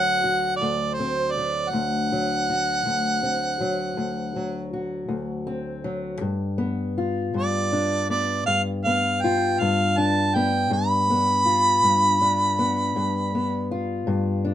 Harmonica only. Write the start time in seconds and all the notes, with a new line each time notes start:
Already playing: F#5
0.56 D5
0.94 C5
1.32 D5
1.70 F#5
7.36 D5
8.10 D5
8.46 F5
8.84 F5
9.22 G5
9.60 F5
9.98 A5
10.35 G5
10.73 B5